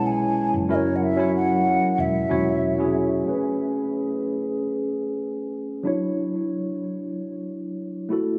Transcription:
0.00 0.48 B1 loud
0.00 0.71 G#3 medium
0.00 0.69 C#4 medium
0.00 0.70 E4 medium
0.00 0.71 B4 loud
0.00 0.71 C#5 loud
0.06 0.54 G#5 loud
0.54 1.77 F#1 medium
0.68 1.14 F#3 medium
0.68 1.14 C#4 medium
0.68 1.14 E4 medium
0.68 1.15 A#4 loud
0.68 0.76 E5 medium
0.75 0.97 C#5 loud
0.96 1.05 F#5 medium
1.03 1.34 E5 loud
1.16 2.26 F#3 medium
1.16 2.26 C#4 medium
1.16 2.27 E4 medium
1.20 2.28 C#5 loud
1.35 2.02 F#5 loud
1.98 2.24 E1 loud
1.98 2.96 E5 medium
2.29 3.22 E1 medium
2.29 2.75 F#3 medium
2.29 2.75 C#4 medium
2.29 2.76 E4 medium
2.29 2.76 C#5 loud
2.78 3.23 F#3 medium
2.78 3.23 C#4 medium
2.78 3.24 E4 medium
2.78 3.24 G#4 medium
3.25 5.80 A3 medium
3.25 5.81 C#4 medium
3.25 5.82 G#4 medium
3.25 5.82 B4 medium
5.83 8.06 F#3 medium
5.83 8.07 D4 medium
5.83 8.08 E4 medium
5.83 8.08 C#5 medium
8.09 8.39 A3 medium
8.09 8.39 E4 medium
8.09 8.39 F#4 medium
8.09 8.39 A4 medium

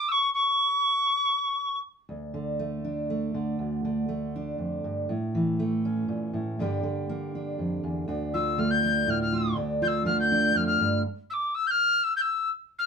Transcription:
0.08 0.33 C#6 medium
0.08 0.12 E6 medium
0.33 1.79 C#6 medium
2.09 3.58 D2 medium
2.34 3.33 D3 soft
2.59 3.10 A3 soft
2.85 3.56 D4 soft
3.10 4.08 A3 soft
3.34 3.83 D3 soft
3.59 4.58 D2 soft
3.85 5.09 D3 soft
4.09 5.06 A3 soft
4.36 5.07 D4 soft
4.58 4.84 F2 soft
4.84 5.09 G2 soft
5.09 6.08 A2 medium
5.35 6.56 E3 soft
5.59 6.56 A3 soft
5.85 6.56 C#4 soft
6.08 6.33 A#2 soft
6.33 6.59 A2 medium
6.59 7.59 G2 medium
6.59 6.82 D3 soft
6.59 7.08 A#3 soft
6.59 7.34 D4 soft
6.59 8.07 G4 medium
6.83 8.57 D3 medium
7.09 8.05 A#3 soft
7.35 8.06 D4 soft
7.59 7.83 F2 soft
7.84 8.07 E2 medium
8.08 9.55 D2 medium
8.08 8.83 D4 soft
8.33 9.31 F4 medium
8.33 8.60 E6 medium
8.58 10.04 D3 medium
8.58 10.06 A3 soft
8.58 8.72 F6 medium
8.70 9.11 G6 medium
8.83 9.54 D4 medium
9.07 9.57 A2 medium
9.07 9.21 F6 medium
9.21 9.55 F6 medium
9.32 9.54 F4 medium
9.56 10.54 D2 medium
9.56 10.31 D4 medium
9.82 11.02 F4 medium
9.82 9.88 G6 medium
9.87 10.05 E6 medium
10.05 11.04 D3 medium
10.05 11.02 A3 medium
10.05 10.17 F6 medium
10.20 10.58 G6 loud
10.32 11.02 D4 medium
10.55 10.80 F2 medium
10.55 10.66 F6 medium
10.66 11.01 F6 medium
10.80 11.05 G2 medium
11.30 11.56 D6 medium
11.30 11.34 E6 medium
11.54 11.68 E6 loud
11.67 12.05 F6 loud
11.67 11.71 G6 loud
12.03 12.15 E6 medium
12.16 12.22 G6 medium
12.21 12.50 E6 medium
12.78 12.86 F6 medium

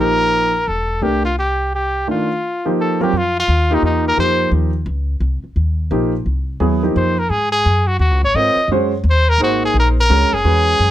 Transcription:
0.00 0.63 A#1 medium
0.00 0.50 F3 medium
0.00 0.50 A#3 medium
0.00 0.51 D#4 medium
0.00 0.51 G4 medium
0.00 0.69 A#4 loud
0.68 1.00 E1 medium
0.68 1.04 A4 medium
1.02 2.03 C2 medium
1.02 1.22 A3 medium
1.02 1.22 D4 soft
1.02 1.22 G4 soft
1.02 1.24 G4 medium
1.02 1.22 A#4 medium
1.25 1.36 F4 medium
1.39 1.70 G4 medium
1.75 2.06 G4 medium
2.07 2.27 D#3 medium
2.07 2.27 A3 soft
2.07 2.27 D4 soft
2.07 2.27 F4 medium
2.07 2.74 F4 medium
2.65 2.98 F3 medium
2.65 2.97 A#3 medium
2.65 2.97 D#4 medium
2.65 2.97 G4 medium
2.80 2.99 A4 medium
3.00 3.11 F#3 medium
3.00 3.11 C4 medium
3.00 3.11 F4 medium
3.00 3.19 G4 medium
3.00 3.11 A#4 medium
3.13 3.46 F2 medium
3.17 3.37 F4 medium
3.40 3.76 F4 medium
3.48 3.81 D#2 medium
3.70 4.15 A#3 medium
3.70 4.15 D#4 medium
3.70 4.14 F4 medium
3.70 4.15 G4 medium
3.74 3.84 D#4 medium
3.82 4.16 E2 medium
3.82 4.04 D#4 medium
4.08 4.18 A#4 loud
4.17 4.51 F2 medium
4.17 4.69 F3 medium
4.17 4.70 A#3 medium
4.17 4.70 D#4 medium
4.17 4.70 G4 medium
4.17 4.51 C5 medium
4.52 4.85 D#2 medium
4.86 5.20 C#2 medium
5.20 5.41 C2 medium
5.44 muted upright bass stroke soft
5.56 5.90 D#2 medium
5.91 6.25 A#1 medium
5.91 6.11 F3 medium
5.91 6.11 A#3 medium
5.91 6.11 D#4 medium
5.91 6.11 G4 medium
6.26 6.60 C2 medium
6.60 6.94 D#2 medium
6.60 6.80 F#3 medium
6.60 6.80 B3 medium
6.60 6.81 E4 medium
6.60 6.81 G#4 medium
6.83 7.13 F3 medium
6.83 7.13 A#3 medium
6.83 7.14 D#4 medium
6.83 7.14 G4 medium
6.96 7.29 F2 medium
6.96 7.21 C5 medium
7.19 7.31 A#4 medium
7.30 7.64 G#2 medium
7.30 7.51 G#4 medium
7.52 7.89 G#4 loud
7.66 7.99 F#2 medium
7.87 7.99 F#4 medium
7.99 8.11 D#2 medium
7.99 8.21 F#4 medium
8.11 8.22 C#2 medium
8.23 8.34 G#1 medium
8.23 8.37 C#5 loud
8.35 8.55 G#2 medium
8.35 8.55 C4 medium
8.35 8.56 F4 soft
8.35 8.56 A#4 soft
8.35 8.56 C#5 medium
8.35 8.70 D#5 medium
8.56 muted upright bass stroke soft
8.68 9.03 F#2 medium
8.68 8.91 G#3 medium
8.68 8.91 C#4 medium
8.68 8.91 F#4 medium
8.68 8.91 C5 medium
9.04 9.38 D#2 medium
9.10 9.31 C5 loud
9.29 9.41 A#4 loud
9.38 9.73 G#1 medium
9.38 9.93 A#3 medium
9.38 9.93 D#4 medium
9.38 9.93 G#4 medium
9.38 9.93 C5 medium
9.43 9.62 F#4 medium
9.65 9.76 G#4 loud
9.74 10.08 A#1 medium
9.80 9.89 A#4 medium
10.00 10.35 A#4 medium
10.10 10.23 C#2 medium
10.10 10.30 G#3 medium
10.10 10.30 C#4 medium
10.10 10.30 F#4 medium
10.10 10.30 A#4 medium
10.21 10.32 G#1 medium
10.32 10.44 F#1 medium
10.32 10.91 G#4 loud
10.44 10.78 E2 medium
10.44 10.91 G#3 soft
10.44 10.91 C#4 soft
10.44 10.91 F#4 soft
10.44 10.91 B4 medium
10.80 10.91 F#2 medium

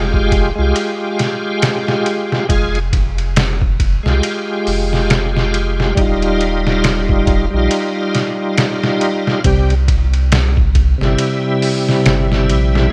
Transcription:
0.00 0.53 F1 medium
0.00 0.50 G#3 medium
0.00 0.52 F4 medium
0.00 0.53 G4 loud
0.14 kick medium
0.32 kick medium
0.32 ride medium
0.55 0.74 C2 medium
0.55 2.44 G#3 medium
0.55 2.45 F4 medium
0.61 2.47 G4 medium
0.76 ride medium
1.19 snare soft
1.19 ride medium
1.62 snare loud
1.62 ride medium
1.88 snare soft
2.06 ride medium
2.32 snare soft
2.49 4.00 F1 medium
2.49 2.78 G#3 medium
2.49 2.79 F4 medium
2.49 2.80 G#4 loud
2.49 kick medium
2.49 ride medium
2.75 ride soft
2.93 kick medium
2.93 ride medium
3.18 ride soft
3.36 snare loud
3.36 ride medium
3.62 kick medium
3.80 kick medium
3.80 ride medium
4.03 4.21 C2 medium
4.03 5.92 G#3 medium
4.03 5.93 F4 medium
4.03 snare soft
4.09 5.95 G4 medium
4.23 ride medium
4.67 5.94 F1 medium
4.67 open hi-hat medium
4.93 snare soft
5.10 snare loud
5.10 ride medium
5.37 snare soft
5.54 ride medium
5.80 snare medium
5.95 7.48 D#1 medium
5.95 7.46 G3 loud
5.95 7.47 D#4 medium
5.95 kick loud
5.95 ride medium
6.01 7.49 F4 loud
6.22 ride soft
6.41 ride medium
6.67 snare soft
6.84 snare loud
6.84 ride medium
7.09 kick medium
7.27 kick medium
7.27 ride medium
7.51 7.69 A#1 medium
7.51 9.39 G3 medium
7.51 9.41 D#4 medium
7.57 9.42 F4 medium
7.71 ride medium
8.15 snare soft
8.15 ride medium
8.58 snare loud
8.58 ride medium
8.84 snare soft
9.01 ride medium
9.27 snare soft
9.44 10.96 C2 medium
9.44 9.73 C3 medium
9.44 9.74 G3 medium
9.44 9.75 G4 medium
9.44 kick medium
9.44 ride medium
9.70 ride soft
9.88 kick medium
9.88 ride medium
10.14 ride soft
10.32 snare loud
10.32 ride medium
10.57 kick medium
10.75 kick medium
10.75 ride medium
10.98 11.17 G1 medium
10.98 12.87 C3 medium
10.98 12.89 G3 medium
10.98 snare soft
11.05 12.90 E4 medium
11.18 ride medium
11.62 open hi-hat medium
11.89 snare soft
12.06 12.52 G1 medium
12.06 snare loud
12.06 ride medium
12.32 snare soft
12.49 12.89 A#1 medium
12.49 ride medium
12.75 snare medium

